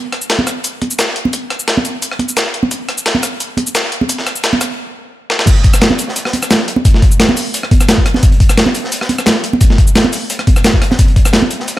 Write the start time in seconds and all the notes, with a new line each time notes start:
0.12 cross-stick, closed hi-hat
0.22 shaker
0.30 snare, closed hi-hat
0.39 high conga
0.47 kick, cross-stick, closed hi-hat, shaker
0.64 closed hi-hat, shaker
0.82 kick, closed hi-hat, high conga
0.91 shaker
0.99 snare, closed hi-hat, shaker
1.16 closed hi-hat
1.25 high conga
1.33 kick, closed hi-hat, shaker
1.50 cross-stick, closed hi-hat
1.60 shaker
1.68 snare, closed hi-hat
1.77 high conga
1.85 closed hi-hat, shaker
2.02 closed hi-hat, shaker
2.11 cross-stick
2.19 kick, closed hi-hat, high conga
2.29 shaker
2.37 snare, closed hi-hat, shaker
2.46 kick
2.54 closed hi-hat
2.63 high conga
2.71 kick, closed hi-hat, shaker
2.89 cross-stick, closed hi-hat
2.98 shaker
3.06 snare, closed hi-hat
3.15 high conga
3.23 kick, cross-stick, closed hi-hat, shaker
3.40 closed hi-hat, shaker
3.57 kick, closed hi-hat, high conga
3.67 shaker
3.75 snare, closed hi-hat, shaker
3.92 closed hi-hat
4.01 high conga
4.09 kick, closed hi-hat, shaker
4.18 snare
4.27 cross-stick, closed hi-hat, shaker
4.36 shaker
4.44 snare, closed hi-hat, shaker
4.53 high conga
4.61 kick, cross-stick, closed hi-hat, shaker
5.30 snare
5.39 snare
5.47 kick, closed hi-hat, crash, shaker
5.56 closed hi-hat
5.64 kick, closed hi-hat
5.74 cross-stick, shaker
5.81 snare, closed hi-hat
5.91 high conga
5.99 closed hi-hat, shaker
6.08 snare
6.16 closed hi-hat, shaker
6.25 cross-stick, snare
6.33 closed hi-hat, high conga
6.43 cross-stick, shaker
6.50 snare, closed hi-hat, shaker
6.68 closed hi-hat
6.76 high conga
6.85 kick, closed hi-hat, shaker
6.94 snare
7.02 kick, closed hi-hat
7.12 shaker
7.20 snare, closed hi-hat
7.29 high conga
7.37 closed hi-hat, open hi-hat, shaker
7.54 closed hi-hat, shaker
7.63 cross-stick
7.71 kick, closed hi-hat, high conga
7.81 cross-stick, shaker
7.89 snare, closed hi-hat, shaker
7.98 kick
8.06 cross-stick, closed hi-hat
8.14 snare, high conga
8.23 kick, closed hi-hat, shaker
8.32 closed hi-hat
8.40 kick, closed hi-hat
8.49 cross-stick, shaker
8.57 snare, closed hi-hat
8.66 high conga
8.75 closed hi-hat, shaker
8.84 snare
8.92 closed hi-hat, shaker
9.01 cross-stick, snare
9.09 closed hi-hat, high conga
9.19 cross-stick, shaker
9.26 snare, closed hi-hat, shaker
9.44 closed hi-hat
9.53 high conga
9.61 kick, closed hi-hat, shaker
9.70 snare
9.78 kick, closed hi-hat
9.87 shaker
9.95 snare, closed hi-hat, shaker
10.04 high conga
10.13 closed hi-hat, open hi-hat, shaker
10.30 closed hi-hat, shaker
10.39 cross-stick, closed hi-hat
10.47 kick, closed hi-hat, high conga
10.56 cross-stick, shaker
10.64 snare, closed hi-hat, shaker
10.74 kick
10.82 cross-stick, closed hi-hat
10.91 snare, high conga
10.99 kick, closed hi-hat, shaker
11.08 closed hi-hat
11.16 kick, closed hi-hat
11.25 cross-stick, shaker
11.33 snare, closed hi-hat
11.42 high conga
11.51 closed hi-hat, shaker
11.60 snare
11.68 closed hi-hat, shaker